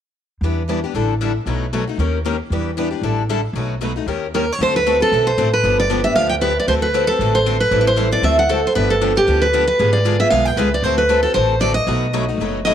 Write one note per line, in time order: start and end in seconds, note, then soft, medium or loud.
0.41 0.83 E2 medium
0.41 0.61 E3 medium
0.41 0.61 G3 medium
0.41 0.61 B3 medium
0.41 0.61 D4 medium
0.41 0.61 E4 medium
0.41 0.62 G4 medium
0.41 0.61 B4 medium
0.69 0.79 E3 medium
0.69 0.79 G3 medium
0.69 0.79 B3 medium
0.69 0.79 D4 medium
0.69 0.79 E4 medium
0.69 0.79 G4 medium
0.69 0.79 B4 medium
0.84 0.95 B3 soft
0.84 0.94 D4 soft
0.84 0.94 G4 soft
0.94 1.36 A1 medium
0.94 1.13 D3 medium
0.94 1.13 G3 medium
0.94 1.13 D4 medium
0.94 1.13 E4 medium
0.94 1.13 A4 medium
1.21 1.31 D3 medium
1.21 1.31 G3 medium
1.21 1.31 D4 medium
1.21 1.31 E4 medium
1.21 1.31 A4 medium
1.46 1.88 B1 medium
1.46 1.65 B2 medium
1.46 1.65 F#3 medium
1.46 1.65 A3 medium
1.46 1.65 D#4 medium
1.46 1.65 F#4 medium
1.46 1.66 B4 medium
1.73 1.83 B2 medium
1.73 1.83 F#3 medium
1.73 1.83 A3 medium
1.73 1.83 D#4 medium
1.73 1.83 F#4 medium
1.73 1.83 B4 medium
1.87 1.99 A3 soft
1.87 1.99 D#4 soft
1.87 1.99 F#4 soft
1.98 2.40 D#2 medium
1.98 2.17 D#3 soft
1.98 2.17 A#3 medium
1.98 2.17 C#4 medium
1.98 2.18 G4 medium
1.98 2.18 A#4 medium
2.25 2.35 D#3 medium
2.25 2.35 A#3 medium
2.25 2.35 C#4 medium
2.25 2.36 G4 medium
2.25 2.36 A#4 medium
2.50 2.92 E2 medium
2.50 2.70 E3 medium
2.50 2.70 G3 medium
2.50 2.70 B3 medium
2.50 2.70 D4 medium
2.50 2.70 E4 medium
2.50 2.70 G4 medium
2.50 2.70 B4 medium
2.77 2.87 E3 medium
2.77 2.88 G3 medium
2.77 2.87 B3 medium
2.77 2.87 D4 medium
2.77 2.88 E4 medium
2.77 2.88 G4 medium
2.77 2.88 B4 medium
2.91 3.03 B3 soft
2.91 3.02 D4 soft
2.91 3.02 G4 soft
3.02 3.44 A1 medium
3.02 3.21 D3 medium
3.02 3.21 G3 medium
3.02 3.21 D4 medium
3.02 3.22 E4 medium
3.02 3.22 A4 medium
3.29 3.39 D3 medium
3.29 3.40 G3 medium
3.29 3.39 D4 medium
3.29 3.40 E4 medium
3.29 3.40 A4 medium
3.53 3.96 B1 medium
3.53 3.73 B2 medium
3.53 3.73 F#3 medium
3.53 3.74 A3 medium
3.53 3.74 D#4 medium
3.53 3.74 F#4 medium
3.58 3.75 B4 medium
3.81 3.91 B2 medium
3.81 3.91 F#3 medium
3.81 3.91 A3 medium
3.81 3.91 D#4 medium
3.81 3.92 F#4 medium
3.81 3.92 B4 medium
3.96 4.07 A3 soft
3.96 4.07 D#4 soft
3.96 4.07 F#4 soft
4.06 4.48 D#2 medium
4.06 4.26 D#3 medium
4.06 4.26 A#3 medium
4.06 4.26 C#4 medium
4.06 4.26 G4 medium
4.06 4.26 A#4 medium
4.34 4.44 D#3 medium
4.34 4.44 A#3 medium
4.34 4.44 C#4 medium
4.34 4.44 G4 medium
4.34 4.52 A#4 medium
4.34 4.44 A#4 medium
4.52 4.60 C#5 medium
4.59 5.01 D2 medium
4.59 4.78 D3 medium
4.59 4.78 A3 medium
4.59 4.78 C4 medium
4.59 4.78 F#4 medium
4.59 4.79 A4 medium
4.59 4.76 C5 medium
4.76 4.99 B4 medium
4.86 4.96 D3 medium
4.86 4.96 A3 medium
4.86 4.96 C4 medium
4.86 4.96 F#4 medium
4.86 4.97 A4 medium
5.00 5.12 C4 soft
5.00 5.12 F#4 soft
5.00 5.11 A4 medium
5.00 5.25 A4 medium
5.12 5.34 B1 medium
5.12 5.30 D3 medium
5.12 5.30 A3 medium
5.12 5.30 C4 medium
5.12 5.31 F#4 medium
5.12 5.31 A4 medium
5.27 5.51 C5 medium
5.38 5.60 A1 medium
5.38 5.48 D3 medium
5.38 5.48 A3 medium
5.38 5.48 C4 medium
5.38 5.48 F#4 medium
5.38 5.48 A4 medium
5.54 5.77 B4 medium
5.63 6.05 G1 medium
5.63 5.82 D3 medium
5.63 5.82 F3 medium
5.63 5.82 B3 medium
5.63 5.82 D4 medium
5.63 5.82 G4 medium
5.80 6.03 D5 medium
5.90 6.00 D3 medium
5.90 6.00 F3 medium
5.90 6.00 B3 medium
5.90 6.00 D4 medium
5.90 6.00 G4 medium
6.04 6.15 B3 soft
6.04 6.16 D4 soft
6.04 6.15 G4 soft
6.04 6.15 E5 medium
6.15 6.57 D2 medium
6.15 6.34 D3 medium
6.15 6.34 F3 medium
6.15 6.34 B3 medium
6.15 6.34 D4 medium
6.15 6.34 G4 medium
6.15 6.29 F5 medium
6.29 6.34 G5 medium
6.41 6.51 D3 medium
6.41 6.51 F3 medium
6.41 6.52 B3 medium
6.41 6.52 D4 medium
6.41 6.52 G4 medium
6.41 6.58 B4 medium
6.60 6.68 D5 medium
6.67 7.09 D2 medium
6.67 6.86 D3 medium
6.67 6.86 A3 medium
6.67 6.86 C4 medium
6.67 6.86 F#4 medium
6.67 6.86 A4 medium
6.67 6.73 C5 medium
6.82 7.09 B4 medium
6.94 7.04 D3 medium
6.94 7.04 A3 medium
6.94 7.04 C4 medium
6.94 7.04 F#4 medium
6.94 7.04 A4 medium
7.07 7.20 F#4 soft
7.07 7.34 A4 medium
7.07 7.20 A4 soft
7.12 7.20 C4 soft
7.19 7.61 A1 medium
7.19 7.38 D3 medium
7.19 7.38 A3 medium
7.19 7.38 C4 medium
7.19 7.38 F#4 medium
7.19 7.39 A4 medium
7.35 7.59 C5 medium
7.46 7.56 D3 medium
7.46 7.56 A3 medium
7.46 7.56 C4 medium
7.46 7.56 F#4 medium
7.46 7.56 A4 medium
7.60 7.79 B4 medium
7.71 8.13 A1 medium
7.71 7.89 E3 medium
7.71 7.90 G3 medium
7.71 7.89 C4 medium
7.71 7.90 E4 medium
7.71 7.90 A4 medium
7.81 7.87 B4 medium
7.87 8.12 C5 medium
7.96 8.07 E3 medium
7.96 8.07 G3 medium
7.96 8.07 C4 medium
7.96 8.07 E4 medium
7.96 8.07 A4 medium
8.11 8.22 C4 soft
8.11 8.23 E4 soft
8.11 8.23 A4 medium
8.11 8.24 D5 medium
8.22 8.64 D2 medium
8.22 8.41 D3 medium
8.22 8.41 A3 medium
8.22 8.41 C4 medium
8.22 8.42 F#4 medium
8.22 8.42 A4 medium
8.22 8.37 E5 medium
8.39 8.49 F#5 medium
8.49 8.59 D3 medium
8.49 8.60 A3 medium
8.49 8.60 C4 medium
8.49 8.60 F#4 medium
8.49 8.67 A4 medium
8.49 8.60 A4 medium
8.67 8.75 C5 medium
8.75 9.17 G1 medium
8.75 8.94 D3 medium
8.75 8.94 F3 medium
8.75 8.94 B3 medium
8.75 8.94 D4 medium
8.75 8.94 G4 medium
8.75 8.89 B4 medium
8.90 9.17 A4 medium
9.01 9.12 D3 medium
9.01 9.12 F3 medium
9.01 9.12 B3 medium
9.01 9.12 D4 medium
9.01 9.12 G4 medium
9.15 9.26 B3 soft
9.15 9.27 D4 soft
9.15 9.27 G4 soft
9.15 9.43 G4 medium
9.27 9.69 D2 medium
9.27 9.45 D3 medium
9.27 9.46 F3 medium
9.27 9.46 B3 medium
9.27 9.46 D4 medium
9.27 9.46 G4 medium
9.42 9.66 B4 medium
9.53 9.63 D3 medium
9.53 9.63 F3 medium
9.53 9.64 B3 medium
9.53 9.64 D4 medium
9.53 9.64 G4 medium
9.67 9.92 B4 medium
9.79 10.21 G#1 medium
9.79 9.97 D3 medium
9.79 9.97 G#3 medium
9.79 9.98 B3 medium
9.79 9.98 F4 medium
9.79 9.98 G#4 medium
9.93 10.20 D5 medium
10.05 10.15 D3 medium
10.05 10.16 G#3 medium
10.05 10.16 B3 medium
10.05 10.16 F4 medium
10.05 10.16 G#4 medium
10.20 10.31 B3 soft
10.20 10.31 F4 soft
10.20 10.31 G#4 medium
10.20 10.30 E5 medium
10.30 10.53 B1 medium
10.30 10.50 D3 medium
10.30 10.50 G#3 medium
10.30 10.50 B3 medium
10.30 10.50 F4 medium
10.30 10.50 G#4 medium
10.30 10.45 F5 medium
10.45 10.58 G5 medium
10.56 10.79 C#2 medium
10.56 10.68 D3 medium
10.56 10.68 G#3 medium
10.56 10.68 B3 medium
10.56 10.68 F4 medium
10.56 10.68 G#4 medium
10.56 10.74 B4 medium
10.74 10.84 D5 medium
10.82 11.25 D2 medium
10.82 11.02 D3 medium
10.82 11.02 A3 medium
10.82 11.02 C4 medium
10.82 11.03 F#4 medium
10.82 11.03 A4 medium
10.82 10.97 C5 medium
10.98 11.22 B4 medium
11.09 11.19 D3 medium
11.09 11.20 A3 medium
11.09 11.20 C4 medium
11.09 11.20 F#4 medium
11.09 11.20 A4 medium
11.23 11.34 C4 soft
11.23 11.35 F#4 medium
11.23 11.34 A4 medium
11.23 11.35 A4 medium
11.34 11.77 A1 medium
11.34 11.54 D3 medium
11.34 11.53 A3 medium
11.34 11.54 C4 medium
11.34 11.54 F#4 medium
11.34 11.54 A4 medium
11.34 11.59 C5 medium
11.61 11.72 D3 medium
11.61 11.72 A3 medium
11.61 11.72 C4 medium
11.61 11.72 F#4 medium
11.61 11.72 A4 medium
11.61 11.74 D5 medium
11.74 12.64 D#5 medium
11.87 12.29 B1 medium
11.87 12.06 B2 medium
11.87 12.06 F#3 medium
11.87 12.06 A3 medium
11.87 12.06 D#4 medium
11.87 12.06 F#4 medium
11.87 12.06 B4 medium
12.13 12.24 B2 medium
12.13 12.24 F#3 medium
12.13 12.24 A3 medium
12.13 12.24 D#4 medium
12.13 12.24 F#4 medium
12.13 12.24 B4 medium
12.29 12.40 A3 soft
12.29 12.40 D#4 soft
12.29 12.39 F#4 medium
12.38 12.74 F#1 medium
12.38 12.58 B2 medium
12.38 12.58 F#3 medium
12.38 12.59 A3 medium
12.38 12.58 B4 medium
12.42 12.59 D#4 medium
12.42 12.59 F#4 medium
12.65 12.74 B2 medium
12.65 12.74 F#3 medium
12.65 12.74 A3 medium
12.65 12.74 D#4 medium
12.65 12.74 F#4 medium
12.65 12.74 B4 medium
12.65 12.74 D#5 medium